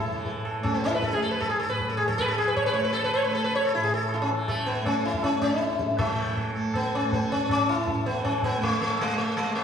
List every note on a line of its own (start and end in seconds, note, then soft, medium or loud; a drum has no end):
0.00 1.67 A2 medium
0.00 0.60 A3 medium
0.00 0.42 E4 medium
0.06 2.18 E3 medium
0.25 0.44 A4 soft
0.25 tabla tin medium
0.25 tabla ge medium
0.45 0.63 A4 soft
0.45 tabla na medium
0.60 1.13 A3 medium
0.60 0.74 C#4 medium
0.64 tabla na medium
0.64 tabla ge medium
0.74 0.84 B3 medium
0.84 0.94 E4 medium
0.84 tabla te medium
0.95 1.04 B4 medium
1.02 1.09 A4 medium
1.02 tabla tin medium
1.02 tabla ge medium
1.10 2.71 A3 medium
1.10 1.22 G#4 medium
1.10 1.13 A4 medium
1.22 1.31 A4 medium
1.31 1.41 B4 medium
1.40 1.49 A4 medium
1.40 tabla na medium
1.40 tabla ge medium
1.50 1.59 G#4 medium
1.60 1.70 A4 medium
1.67 3.76 A2 medium
1.67 1.90 B4 medium
1.80 tabla tin medium
1.80 tabla ge medium
1.90 1.97 A4 medium
1.97 2.07 G#4 medium
1.97 tabla na medium
2.08 2.18 A4 medium
2.08 tabla ke medium
2.18 4.29 E3 medium
2.18 2.28 B4 medium
2.18 tabla na medium
2.18 tabla ge medium
2.28 2.38 A4 medium
2.38 2.48 G#4 medium
2.48 2.56 B4 medium
2.56 2.66 C#5 medium
2.56 tabla tin medium
2.56 tabla ge medium
2.66 2.73 B4 medium
2.71 3.25 A3 medium
2.71 2.84 C#5 medium
2.84 2.92 B4 medium
2.93 3.03 A4 loud
2.93 tabla na medium
3.04 3.13 B4 medium
3.14 3.24 C#5 medium
3.14 tabla na medium
3.24 4.81 A3 medium
3.24 3.34 B4 medium
3.33 3.44 A4 medium
3.33 tabla na medium
3.44 3.53 B4 medium
3.55 3.64 C#5 medium
3.65 3.73 A4 medium
3.72 3.83 E4 medium
3.72 tabla tin medium
3.76 5.84 A2 medium
3.83 3.92 G#4 medium
3.94 4.12 A4 medium
4.09 tabla na medium
4.14 4.16 E4 medium
4.14 4.20 E4 soft
4.22 4.29 C#4 medium
4.29 5.98 E3 medium
4.29 tabla na medium
4.48 4.68 A3 medium
4.48 4.66 A4 soft
4.48 tabla na medium
4.48 tabla ge medium
4.66 4.84 B3 medium
4.81 5.33 A3 medium
4.85 5.05 C#4 medium
4.85 5.04 A4 soft
4.85 tabla na medium
4.85 tabla ge medium
5.04 5.23 E4 medium
5.04 tabla te medium
5.14 tabla ge medium
5.23 5.41 C#4 medium
5.23 5.40 A4 soft
5.23 tabla na medium
5.23 tabla ge medium
5.33 6.52 A3 medium
5.42 6.01 E4 loud
5.42 5.60 A4 soft
5.42 tabla ge medium
5.61 tabla te medium
5.70 tabla te medium
5.79 tabla ke medium
5.85 7.54 A2 medium
5.89 tabla te medium
5.98 8.08 E3 medium
5.98 6.52 A3 medium
5.98 tabla na medium
5.98 tabla ge medium
6.36 6.54 A4 soft
6.36 tabla tin medium
6.36 tabla ge medium
6.52 7.03 A3 medium
6.52 tabla na medium
6.56 6.73 A4 soft
6.74 6.95 B3 medium
6.74 tabla na medium
6.74 tabla ge medium
6.95 7.13 C#4 medium
7.03 8.56 A3 medium
7.12 7.32 B3 medium
7.12 tabla tin medium
7.12 tabla ge medium
7.31 7.50 C#4 medium
7.31 tabla na medium
7.49 7.69 C#4 medium
7.49 tabla na medium
7.49 tabla ge medium
7.54 9.61 A2 medium
7.69 8.06 E4 medium
7.87 8.05 A4 soft
7.87 tabla tin medium
7.87 tabla ge medium
8.06 9.64 E3 medium
8.06 8.24 B3 medium
8.06 tabla na medium
8.25 8.44 C#4 medium
8.25 tabla na medium
8.25 tabla ge medium
8.42 8.63 B3 medium
8.42 tabla ge medium
8.56 9.09 A3 medium
8.62 8.80 A3 medium
8.62 tabla tin medium
8.62 tabla ge medium
8.81 9.01 A3 medium
8.81 tabla na medium
8.99 9.17 G#3 medium
8.99 tabla na medium
9.09 9.64 A3 medium
9.18 9.36 A3 medium
9.37 9.55 G#3 medium
9.37 tabla na medium
9.55 9.64 A3 medium